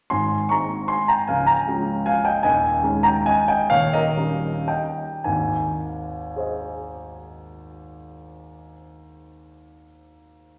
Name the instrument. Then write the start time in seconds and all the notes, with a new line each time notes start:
grand piano
0.10 G#1 G#2 G#5 C6
0.49 G#3 C4 D#4 A#5 C#6
0.88 G#5 C6
1.08 G5 A#5
1.27 C#1 C#2 F5 G#5
1.46 G5 A#5
1.67 G#3 C#4 F4
2.06 F5 G#5
2.25 D#5 G5
2.43 D#1 D#2 D#5 G#5
2.83 G#3 C#4 D#4
3.03 G5 A#5
3.26 D#5 G#5
3.48 D#5 G5
3.70 D#1 D#2 C#5 F5
3.93 A#4 D#5
4.17 G3 C#4 D#4
4.68 D#5 G5
5.24 G#1 D#2 G#5
6.36 G#4 C5 D#5